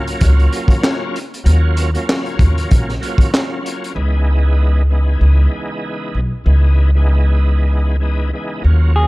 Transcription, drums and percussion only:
0.07 closed hi-hat medium
0.21 kick loud
0.21 closed hi-hat loud
0.39 closed hi-hat soft
0.53 closed hi-hat medium
0.68 kick medium
0.68 closed hi-hat medium
0.83 snare loud
0.83 clap loud
1.16 closed hi-hat medium
1.34 closed hi-hat medium
1.46 closed hi-hat medium
1.77 closed hi-hat medium
1.95 closed hi-hat soft
2.09 snare loud
2.09 clap medium
2.26 closed hi-hat soft
2.39 kick loud
2.39 closed hi-hat medium
2.58 closed hi-hat medium
2.71 kick loud
2.71 closed hi-hat medium
2.89 snare soft
2.89 closed hi-hat soft
3.03 closed hi-hat medium
3.18 kick medium
3.18 closed hi-hat medium
3.34 snare loud
3.34 clap loud
3.66 closed hi-hat medium
3.84 closed hi-hat medium

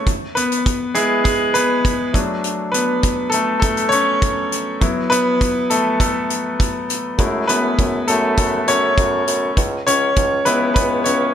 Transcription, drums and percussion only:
0.07 kick medium
0.07 closed hi-hat medium
0.37 closed hi-hat medium
0.52 closed hi-hat soft
0.66 kick loud
0.66 closed hi-hat medium
0.95 closed hi-hat medium
1.25 kick medium
1.25 closed hi-hat medium
1.55 closed hi-hat medium
1.85 kick loud
1.85 closed hi-hat medium
2.14 kick medium
2.14 closed hi-hat medium
2.44 closed hi-hat medium
2.74 closed hi-hat medium
3.03 kick medium
3.03 closed hi-hat medium
3.32 closed hi-hat medium
3.62 kick medium
3.62 closed hi-hat medium
3.77 closed hi-hat soft
3.92 closed hi-hat medium
4.22 kick loud
4.22 closed hi-hat medium
4.52 closed hi-hat medium
4.81 kick medium
4.81 closed hi-hat medium
5.12 closed hi-hat medium
5.41 kick medium
5.41 closed hi-hat medium
5.70 closed hi-hat medium
6.00 kick medium
6.00 closed hi-hat medium
6.30 closed hi-hat medium
6.60 kick medium
6.60 closed hi-hat medium
6.90 closed hi-hat medium
7.19 kick medium
7.19 closed hi-hat medium
7.49 closed hi-hat medium
7.79 kick loud
7.79 closed hi-hat medium
8.08 closed hi-hat medium
8.37 kick medium
8.37 closed hi-hat medium
8.68 closed hi-hat medium
8.98 kick loud
8.98 closed hi-hat medium
9.28 closed hi-hat medium
9.57 kick medium
9.57 closed hi-hat medium
9.87 closed hi-hat medium
10.16 kick medium
10.16 closed hi-hat medium
10.46 closed hi-hat medium
10.76 kick medium
10.76 closed hi-hat medium
11.05 closed hi-hat medium

